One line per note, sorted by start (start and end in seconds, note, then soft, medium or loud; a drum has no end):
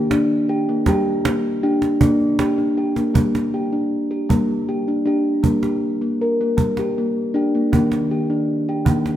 0.00 0.68 A#3 medium
0.00 0.11 G4 medium
0.11 0.49 D4 medium
0.11 cajon slap medium
0.49 0.68 G4 medium
0.69 0.88 A#3 medium
0.86 1.20 G3 medium
0.86 1.26 G4 medium
0.86 cajon bass medium
0.86 cajon slap soft
1.25 1.63 A#3 medium
1.25 cajon slap medium
1.63 1.96 D4 medium
1.63 2.01 G4 medium
1.82 cajon slap soft
2.01 2.40 A#3 medium
2.01 2.57 D4 medium
2.01 cajon bass medium
2.20 cajon slap soft
2.39 2.58 G4 medium
2.39 cajon slap medium
2.58 2.77 D4 medium
2.58 cajon slap soft
2.77 2.96 G4 medium
2.96 3.14 A#3 medium
2.96 cajon slap soft
3.14 3.48 G3 medium
3.14 3.53 A#3 medium
3.14 cajon bass medium
3.35 cajon slap soft
3.54 3.73 G4 medium
3.73 4.10 D4 medium
4.11 4.30 G4 medium
4.29 4.95 G3 medium
4.29 4.68 A#3 medium
4.29 cajon bass medium
4.69 4.87 G4 medium
4.88 5.04 D4 medium
5.05 5.22 D4 medium
5.05 5.44 G4 medium
5.43 5.76 G3 medium
5.43 5.63 A#3 medium
5.43 cajon bass soft
5.63 6.01 G4 medium
5.63 cajon slap soft
6.02 6.20 A#3 medium
6.21 6.40 A#4 medium
6.41 6.78 A#3 medium
6.57 7.23 G3 medium
6.57 cajon bass soft
6.77 6.97 G4 medium
6.77 cajon slap soft
6.98 7.35 A#3 medium
7.34 7.51 D4 medium
7.34 7.54 G4 medium
7.55 7.73 A#3 medium
7.72 8.05 D#3 medium
7.72 8.11 A#3 medium
7.72 cajon bass medium
7.92 cajon slap soft
8.11 8.30 G4 medium
8.30 8.68 D4 medium
8.69 8.87 G4 medium
8.86 9.16 D#3 medium
8.86 9.16 A#3 medium
8.86 cajon bass medium
9.06 cajon slap soft